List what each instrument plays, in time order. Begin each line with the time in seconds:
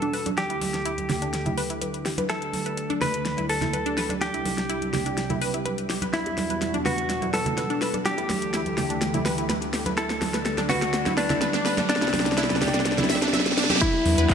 Already playing: analog synth pad E2 B2 G3 D4 F#4, clean electric guitar A4
0.02 synth pluck D4, closed hi-hat
0.13 synth pluck B4, open hi-hat
0.26 synth pluck D4, closed hi-hat, high conga
0.37 analog synth pad D2 D3 A3 E4 A4, synth pluck D4, clean electric guitar G4, snare, closed hi-hat
0.50 synth pluck E4, closed hi-hat
0.61 open hi-hat, high conga
0.74 snare, closed hi-hat
0.85 synth pluck E4, closed hi-hat
0.98 closed hi-hat, high conga
1.09 synth pluck G4, snare, open hi-hat, low conga
1.22 synth pluck D4, closed hi-hat
1.33 snare, closed hi-hat
1.46 synth pluck E4, closed hi-hat, high conga, low conga
1.58 synth pluck B4, open hi-hat
1.70 synth pluck E4, closed hi-hat
1.82 synth pluck B4, closed hi-hat, high conga
1.94 closed hi-hat
2.06 synth pluck G4, snare, open hi-hat
2.18 synth pluck B4, closed hi-hat, high conga
2.29 analog synth pad D2 A3 G4 D5, synth pluck E4, clean electric guitar A4, snare, closed hi-hat
2.42 closed hi-hat
2.53 open hi-hat, high conga
2.66 synth pluck B4, closed hi-hat
2.77 closed hi-hat
2.90 synth pluck D4, closed hi-hat, high conga
3.01 synth pluck B4, clean electric guitar B4, snare, open hi-hat, low conga
3.14 closed hi-hat
3.25 snare, closed hi-hat
3.37 synth pluck E4, closed hi-hat, high conga
3.49 clean electric guitar A4, synth pluck B4, open hi-hat
3.61 synth pluck E4, snare, closed hi-hat, low conga
3.73 synth pluck B4, closed hi-hat, high conga
3.86 synth pluck D4, closed hi-hat
3.97 synth pluck B4, snare, open hi-hat
4.09 synth pluck D4, closed hi-hat, high conga
4.21 analog synth pad C2 C3 G3 D4, synth pluck D4, clean electric guitar G4, snare, closed hi-hat
4.34 synth pluck E4, closed hi-hat
4.45 open hi-hat, high conga
4.58 snare, closed hi-hat
4.70 synth pluck E4, closed hi-hat
4.82 closed hi-hat, high conga
4.93 synth pluck G4, snare, open hi-hat, low conga
5.06 synth pluck D4, closed hi-hat
5.17 snare, closed hi-hat
5.30 synth pluck E4, closed hi-hat, high conga, low conga
5.42 synth pluck B4, open hi-hat
5.54 synth pluck E4, closed hi-hat
5.65 synth pluck B4, closed hi-hat, high conga
5.78 closed hi-hat
5.90 synth pluck G4, snare, open hi-hat
6.02 synth pluck B4, closed hi-hat, high conga
6.13 analog synth pad E2 B2 D4 F#4, clean electric guitar E4, synth pluck E4, snare, closed hi-hat, riser
6.26 closed hi-hat, high bongo
6.38 snare, open hi-hat, high conga
6.50 synth pluck B4, closed hi-hat
6.62 snare, closed hi-hat
6.74 synth pluck D4, closed hi-hat, high conga
6.86 clean electric guitar F#4, synth pluck B4, snare, open hi-hat, low conga
6.98 closed hi-hat
7.10 snare, closed hi-hat
7.22 synth pluck E4, closed hi-hat, high conga
7.34 clean electric guitar A4, synth pluck B4, snare, open hi-hat
7.46 synth pluck E4, closed hi-hat, low conga
7.57 synth pluck B4, snare, closed hi-hat, high conga
7.70 synth pluck D4, closed hi-hat
7.82 synth pluck B4, snare, open hi-hat
7.93 synth pluck D4, closed hi-hat, high bongo, high conga
8.05 analog synth pad D2 D3 E3 A3 A4, synth pluck D4, clean electric guitar G4, snare, closed hi-hat
8.18 synth pluck E4, closed hi-hat, high bongo
8.30 snare, open hi-hat, high conga
8.42 closed hi-hat
8.54 synth pluck E4, snare, closed hi-hat
8.66 closed hi-hat, high conga
8.78 synth pluck G4, snare, open hi-hat, low conga
8.90 synth pluck D4, closed hi-hat
9.02 snare, closed hi-hat
9.14 synth pluck E4, closed hi-hat, high conga, low conga
9.26 synth pluck B4, snare, open hi-hat
9.38 synth pluck E4, closed hi-hat
9.50 synth pluck B4, snare, closed hi-hat, high conga
9.62 closed hi-hat, high bongo
9.73 synth pluck G4, snare, open hi-hat
9.86 synth pluck B4, closed hi-hat, high conga
9.97 analog synth pad D2 D3 G3 D4, synth pluck E4, clean electric guitar A4, snare, closed hi-hat
10.10 snare, closed hi-hat, high bongo
10.21 snare, open hi-hat, high conga
10.34 synth pluck B4, snare, closed hi-hat
10.45 snare, closed hi-hat
10.57 synth pluck D4, snare, closed hi-hat, high conga
10.69 clean electric guitar F#4, synth pluck B4, snare, open hi-hat, low conga
10.82 snare, closed hi-hat
10.93 snare, closed hi-hat
11.06 synth pluck E4, snare, closed hi-hat, high conga
11.17 clean electric guitar D4, synth pluck B4, snare, open hi-hat
11.30 synth pluck E4, snare, closed hi-hat, low conga
11.41 synth pluck B4, snare, closed hi-hat, high conga
11.54 synth pluck D4, snare, closed hi-hat
11.65 synth pluck B4, snare, open hi-hat
11.78 synth pluck D4, snare, closed hi-hat, high bongo, high conga
11.89 analog synth pad C2 C3 G4, clean electric guitar D4, synth pluck D4, snare, closed hi-hat
11.96 snare
12.02 synth pluck E4, snare, closed hi-hat, high bongo
12.08 snare
12.13 snare, open hi-hat, high conga
12.20 snare
12.26 snare, closed hi-hat
12.32 snare
12.37 synth pluck E4, snare, closed hi-hat
12.44 snare
12.50 snare, closed hi-hat, high conga
12.56 snare
12.61 synth pluck G4, snare, open hi-hat, low conga
12.68 snare
12.74 synth pluck D4, snare, closed hi-hat
12.80 snare
12.85 snare, closed hi-hat, reverse cymbal
12.92 snare
12.98 synth pluck E4, snare, closed hi-hat, high conga, low conga
13.04 snare
13.09 synth pluck E5, snare, open hi-hat
13.16 snare
13.22 synth pluck D4, snare, closed hi-hat
13.28 snare
13.33 synth pluck E5, snare, closed hi-hat, high conga
13.40 snare
13.46 snare, closed hi-hat, high bongo
13.52 snare
13.57 synth pluck D4, snare, open hi-hat
13.64 snare
13.70 synth pluck G4, snare, closed hi-hat, high conga
13.76 snare
13.81 analog synth pad E3 G3 B3 D4 F#4, clean electric guitar E4, synth bell E4, synth pluck E4 E5, kick, closed hi-hat, crash, downlifter
13.94 high bongo
14.06 analog synth bass E2, open hi-hat, high conga
14.18 analog synth bass E2, synth pluck B4 B5, closed hi-hat
14.30 kick, clap, closed hi-hat